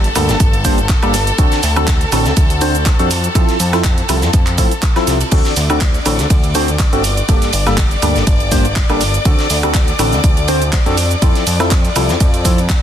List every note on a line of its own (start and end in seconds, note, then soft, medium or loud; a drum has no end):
0.00 5.33 A4 medium
0.00 5.33 A5 medium
0.04 closed hi-hat soft
0.04 shaker soft
0.16 0.30 D2 medium
0.16 0.37 G2 medium
0.16 0.37 A#3 medium
0.16 0.37 D4 medium
0.16 0.38 G4 medium
0.16 0.37 A4 medium
0.16 open hi-hat loud
0.16 ride medium
0.16 high woodblock medium
0.16 shaker medium
0.29 0.36 G1 loud
0.29 snare soft
0.29 closed hi-hat soft
0.29 shaker soft
0.40 0.95 G1 loud
0.40 kick loud
0.40 closed hi-hat medium
0.40 ride medium
0.40 shaker soft
0.53 closed hi-hat soft
0.53 ride soft
0.53 shaker soft
0.65 0.79 G2 loud
0.65 0.79 A#3 medium
0.65 0.79 D4 medium
0.65 0.79 G4 medium
0.65 0.79 C5 loud
0.65 kick medium
0.65 open hi-hat loud
0.65 ride medium
0.65 shaker medium
0.78 closed hi-hat soft
0.78 shaker soft
0.89 kick loud
0.89 snare loud
0.89 clap loud
0.89 closed hi-hat medium
0.89 ride medium
0.89 shaker soft
1.03 1.32 G1 medium
1.03 1.15 G2 loud
1.03 1.15 A#3 medium
1.03 1.15 D4 medium
1.03 1.15 G4 medium
1.03 1.15 A4 loud
1.03 closed hi-hat soft
1.03 high woodblock medium
1.03 shaker soft
1.14 snare soft
1.14 open hi-hat loud
1.14 ride medium
1.14 shaker medium
1.27 closed hi-hat soft
1.27 shaker soft
1.38 1.47 D2 loud
1.38 1.60 D3 medium
1.38 1.60 C4 medium
1.38 1.60 D4 medium
1.38 1.60 F#4 medium
1.38 1.60 A4 medium
1.38 kick loud
1.38 closed hi-hat medium
1.38 ride medium
1.38 shaker soft
1.52 snare medium
1.52 closed hi-hat soft
1.52 shaker soft
1.62 2.05 D2 medium
1.62 snare soft
1.62 open hi-hat loud
1.62 ride medium
1.62 shaker medium
1.76 1.89 D3 medium
1.76 1.89 C4 medium
1.76 1.89 D4 medium
1.76 1.89 F#4 medium
1.76 1.89 A4 loud
1.76 high woodblock medium
1.76 shaker soft
1.87 kick loud
1.87 snare loud
1.87 clap loud
1.87 closed hi-hat loud
1.87 ride loud
1.87 shaker soft
2.01 closed hi-hat soft
2.01 ride soft
2.01 shaker soft
2.12 2.27 A1 medium
2.12 2.34 D3 medium
2.12 2.34 C4 medium
2.12 2.34 D4 medium
2.12 2.34 F#4 medium
2.12 2.34 A4 medium
2.12 open hi-hat loud
2.12 ride medium
2.12 high woodblock medium
2.12 shaker medium
2.25 2.33 D2 loud
2.25 snare soft
2.25 closed hi-hat soft
2.25 shaker soft
2.37 2.91 D2 loud
2.37 kick loud
2.37 closed hi-hat medium
2.37 ride loud
2.37 shaker soft
2.50 closed hi-hat soft
2.50 ride soft
2.50 shaker soft
2.61 2.76 D3 loud
2.61 2.76 C4 medium
2.61 2.76 D4 medium
2.61 2.76 F#4 medium
2.61 2.76 C5 loud
2.61 open hi-hat loud
2.61 ride medium
2.61 shaker medium
2.75 closed hi-hat soft
2.75 shaker soft
2.86 kick loud
2.86 snare loud
2.86 clap loud
2.86 closed hi-hat loud
2.86 ride medium
2.86 shaker soft
2.99 3.28 F2 medium
2.99 3.09 F3 loud
2.99 3.09 C4 medium
2.99 3.09 D4 medium
2.99 3.09 F#4 medium
2.99 3.09 A4 loud
2.99 closed hi-hat soft
2.99 shaker soft
3.11 open hi-hat loud
3.11 ride medium
3.11 shaker medium
3.24 closed hi-hat soft
3.24 shaker soft
3.35 3.43 F2 loud
3.35 3.57 F3 medium
3.35 3.57 C4 medium
3.35 3.57 E4 medium
3.35 3.57 F4 medium
3.35 3.57 A4 medium
3.35 kick loud
3.35 closed hi-hat loud
3.35 ride medium
3.35 shaker soft
3.49 snare soft
3.49 closed hi-hat soft
3.49 shaker soft
3.60 4.02 F2 medium
3.60 open hi-hat loud
3.60 ride medium
3.60 shaker medium
3.73 3.86 F3 loud
3.73 3.86 C4 medium
3.73 3.86 E4 medium
3.73 3.86 F4 medium
3.73 3.86 A4 loud
3.73 snare soft
3.73 closed hi-hat soft
3.73 high woodblock medium
3.73 shaker soft
3.84 kick loud
3.84 snare loud
3.84 clap loud
3.84 closed hi-hat loud
3.84 ride medium
3.84 shaker soft
3.98 closed hi-hat soft
3.98 shaker soft
4.09 4.24 C2 medium
4.09 4.31 F3 medium
4.09 4.31 C4 medium
4.09 4.31 E4 medium
4.09 4.31 F4 medium
4.09 4.31 A4 medium
4.09 open hi-hat loud
4.09 ride medium
4.09 high woodblock medium
4.09 shaker medium
4.22 4.29 F2 medium
4.22 snare soft
4.22 closed hi-hat soft
4.22 shaker soft
4.33 4.58 F2 loud
4.33 kick loud
4.33 closed hi-hat medium
4.33 ride medium
4.33 shaker soft
4.47 clap soft
4.47 closed hi-hat soft
4.47 ride soft
4.47 shaker soft
4.58 4.66 A2 loud
4.58 4.73 F3 medium
4.58 4.73 C4 medium
4.58 4.73 E4 medium
4.58 4.73 F4 medium
4.58 4.73 A4 loud
4.58 kick medium
4.58 open hi-hat loud
4.58 ride medium
4.58 shaker medium
4.71 closed hi-hat soft
4.71 shaker soft
4.83 kick loud
4.83 clap loud
4.83 closed hi-hat loud
4.83 shaker soft
4.96 5.18 F3 medium
4.96 5.18 C4 medium
4.96 5.18 E4 medium
4.96 5.17 F4 medium
4.96 5.18 A4 loud
4.96 snare medium
4.96 closed hi-hat soft
4.96 high woodblock medium
4.96 shaker soft
5.07 5.23 C2 loud
5.07 snare soft
5.07 open hi-hat loud
5.07 ride medium
5.07 shaker medium
5.21 closed hi-hat soft
5.21 ride medium
5.21 shaker soft
5.31 5.40 D2 loud
5.31 5.54 D3 medium
5.31 5.54 C4 medium
5.31 5.54 D4 medium
5.31 5.54 F#4 medium
5.31 5.54 A4 medium
5.31 12.82 D5 medium
5.31 12.82 D6 medium
5.31 kick loud
5.31 closed hi-hat medium
5.31 crash medium
5.31 ride medium
5.31 shaker soft
5.45 snare medium
5.45 closed hi-hat soft
5.45 shaker soft
5.56 5.99 D2 medium
5.56 snare soft
5.56 open hi-hat loud
5.56 ride medium
5.56 shaker medium
5.70 5.82 D3 loud
5.70 5.82 C4 medium
5.70 5.82 D4 medium
5.70 5.82 F#4 medium
5.70 5.82 A4 loud
5.70 closed hi-hat soft
5.70 high woodblock medium
5.70 shaker soft
5.81 kick loud
5.81 snare loud
5.81 clap loud
5.81 closed hi-hat loud
5.81 ride loud
5.81 ride medium
5.81 shaker soft
5.94 closed hi-hat soft
5.94 ride soft
5.94 shaker soft
6.05 6.20 A1 medium
6.05 6.28 D3 medium
6.05 6.28 C4 medium
6.05 6.28 D4 medium
6.05 6.28 F#4 medium
6.05 6.28 A4 medium
6.05 open hi-hat loud
6.05 ride medium
6.05 high woodblock medium
6.05 shaker medium
6.19 6.26 D2 loud
6.19 snare soft
6.19 closed hi-hat soft
6.19 shaker soft
6.30 6.85 D2 loud
6.30 kick loud
6.30 closed hi-hat loud
6.30 ride medium
6.30 shaker soft
6.44 closed hi-hat soft
6.44 ride soft
6.44 shaker soft
6.55 6.69 D3 loud
6.55 6.69 C4 medium
6.55 6.69 D4 medium
6.55 6.69 F#4 medium
6.55 6.69 C5 loud
6.55 open hi-hat loud
6.55 ride medium
6.55 shaker medium
6.68 closed hi-hat soft
6.68 shaker soft
6.79 kick loud
6.79 snare loud
6.79 clap loud
6.79 closed hi-hat loud
6.79 ride medium
6.79 shaker soft
6.93 7.22 G1 medium
6.93 7.03 C4 loud
6.93 7.03 D4 medium
6.93 7.03 F#4 medium
6.93 7.03 A4 loud
6.93 closed hi-hat soft
6.93 shaker soft
7.04 open hi-hat loud
7.04 ride medium
7.04 shaker medium
7.17 closed hi-hat soft
7.17 shaker soft
7.29 7.37 G1 loud
7.29 7.51 G2 medium
7.29 7.51 A#3 medium
7.29 7.51 D4 medium
7.29 7.51 G4 medium
7.29 7.51 A4 medium
7.29 kick loud
7.29 closed hi-hat medium
7.29 ride medium
7.29 shaker soft
7.42 snare soft
7.42 closed hi-hat soft
7.42 shaker soft
7.53 7.96 G1 medium
7.53 open hi-hat loud
7.53 ride medium
7.53 shaker medium
7.67 7.79 G2 loud
7.67 7.79 A#3 medium
7.67 7.79 D4 medium
7.67 7.79 G4 medium
7.67 7.79 A4 loud
7.67 snare soft
7.67 closed hi-hat soft
7.67 high woodblock medium
7.67 shaker soft
7.77 kick loud
7.77 snare loud
7.77 clap loud
7.77 closed hi-hat loud
7.77 ride medium
7.77 shaker soft
7.91 closed hi-hat soft
7.91 shaker soft
8.02 8.17 D2 medium
8.02 8.24 G2 medium
8.02 8.24 A#3 medium
8.02 8.24 D4 medium
8.02 8.24 G4 medium
8.02 8.24 A4 medium
8.02 open hi-hat loud
8.02 ride medium
8.02 high woodblock medium
8.02 shaker medium
8.16 8.23 G1 loud
8.16 snare soft
8.16 closed hi-hat soft
8.16 shaker soft
8.27 8.81 G1 loud
8.27 kick loud
8.27 closed hi-hat medium
8.27 ride medium
8.27 ride loud
8.27 shaker soft
8.40 closed hi-hat soft
8.40 ride soft
8.40 shaker soft
8.52 8.66 G2 loud
8.52 8.66 A#3 medium
8.52 8.66 D4 medium
8.52 8.66 G4 medium
8.52 8.66 C5 loud
8.52 kick medium
8.52 open hi-hat loud
8.52 ride medium
8.52 shaker medium
8.65 closed hi-hat soft
8.65 shaker soft
8.76 kick loud
8.76 snare loud
8.76 clap loud
8.76 closed hi-hat loud
8.76 ride medium
8.76 ride loud
8.76 shaker soft
8.89 9.19 G1 medium
8.89 9.02 G2 loud
8.89 9.02 A#3 medium
8.89 9.02 D4 medium
8.89 9.02 G4 medium
8.89 9.02 A4 loud
8.89 closed hi-hat soft
8.89 high woodblock medium
8.89 shaker soft
9.00 snare soft
9.00 open hi-hat loud
9.00 ride medium
9.00 shaker medium
9.14 closed hi-hat soft
9.14 shaker soft
9.25 9.34 D2 loud
9.25 9.47 D3 medium
9.25 9.47 C4 medium
9.25 9.47 D4 medium
9.25 9.47 F#4 medium
9.25 9.47 A4 medium
9.25 kick loud
9.25 closed hi-hat medium
9.25 ride loud
9.25 ride medium
9.25 shaker soft
9.39 snare medium
9.39 closed hi-hat soft
9.39 shaker soft
9.50 9.92 D2 medium
9.50 snare soft
9.50 open hi-hat loud
9.50 ride medium
9.50 shaker medium
9.63 9.76 D3 loud
9.63 9.76 C4 medium
9.63 9.76 D4 medium
9.63 9.76 F#4 medium
9.63 9.76 A4 loud
9.63 closed hi-hat soft
9.63 high woodblock medium
9.63 shaker soft
9.74 kick loud
9.74 snare loud
9.74 clap loud
9.74 closed hi-hat medium
9.74 ride medium
9.74 shaker soft
9.87 closed hi-hat soft
9.87 ride soft
9.87 shaker soft
9.99 10.14 A1 medium
9.99 10.21 D3 medium
9.99 10.21 C4 medium
9.99 10.21 D4 medium
9.99 10.21 F#4 medium
9.99 10.21 A4 medium
9.99 open hi-hat loud
9.99 ride medium
9.99 high woodblock medium
9.99 shaker medium
10.12 10.19 D2 loud
10.12 snare soft
10.12 closed hi-hat soft
10.12 shaker soft
10.24 10.78 D2 loud
10.24 kick loud
10.24 closed hi-hat medium
10.24 ride medium
10.24 shaker soft
10.37 closed hi-hat soft
10.37 ride soft
10.37 shaker soft
10.48 10.63 D3 loud
10.48 10.63 C4 medium
10.48 10.63 D4 medium
10.48 10.63 F#4 medium
10.48 10.63 C5 loud
10.48 open hi-hat loud
10.48 ride medium
10.48 shaker medium
10.62 closed hi-hat soft
10.62 shaker soft
10.73 kick loud
10.73 snare loud
10.73 clap loud
10.73 closed hi-hat medium
10.73 ride medium
10.73 shaker soft
10.86 11.15 F2 medium
10.86 10.96 F3 loud
10.86 10.96 C4 loud
10.86 10.96 D4 loud
10.86 10.96 F#4 medium
10.86 10.96 A4 loud
10.86 closed hi-hat soft
10.86 shaker soft
10.98 open hi-hat loud
10.98 ride medium
10.98 shaker medium
11.11 closed hi-hat soft
11.11 shaker soft
11.22 11.30 F2 loud
11.22 11.44 F3 medium
11.22 11.44 C4 medium
11.22 11.44 E4 medium
11.22 11.44 F4 medium
11.22 11.44 A4 medium
11.22 kick loud
11.22 closed hi-hat medium
11.22 ride medium
11.22 shaker soft
11.35 snare soft
11.35 closed hi-hat soft
11.35 shaker soft
11.47 11.89 F2 medium
11.47 open hi-hat loud
11.47 ride medium
11.47 shaker medium
11.60 11.73 F3 loud
11.60 11.73 C4 medium
11.60 11.73 E4 medium
11.60 11.73 F4 medium
11.60 11.73 A4 loud
11.60 snare soft
11.60 closed hi-hat soft
11.60 high woodblock medium
11.60 shaker soft
11.71 kick loud
11.71 snare loud
11.71 clap loud
11.71 closed hi-hat medium
11.71 ride medium
11.71 shaker soft
11.85 closed hi-hat soft
11.85 shaker soft
11.95 12.11 C2 medium
11.95 12.18 F3 medium
11.95 12.18 C4 medium
11.95 12.18 E4 medium
11.95 12.18 F4 medium
11.95 12.18 A4 medium
11.95 open hi-hat loud
11.95 ride medium
11.95 high woodblock medium
11.95 shaker medium
12.09 12.16 F2 loud
12.09 snare soft
12.09 closed hi-hat soft
12.09 shaker soft
12.20 12.75 F2 loud
12.20 kick loud
12.20 closed hi-hat medium
12.20 ride medium
12.20 shaker soft
12.34 closed hi-hat soft
12.34 ride soft
12.34 shaker soft
12.45 12.59 F3 medium
12.45 12.59 C4 medium
12.45 12.60 E4 medium
12.45 12.59 F4 medium
12.45 12.59 A4 medium
12.45 kick medium
12.45 open hi-hat loud
12.45 ride medium
12.45 shaker medium
12.58 closed hi-hat soft
12.58 shaker soft
12.69 kick loud
12.69 snare loud
12.69 clap loud
12.69 closed hi-hat medium
12.69 ride medium
12.69 shaker soft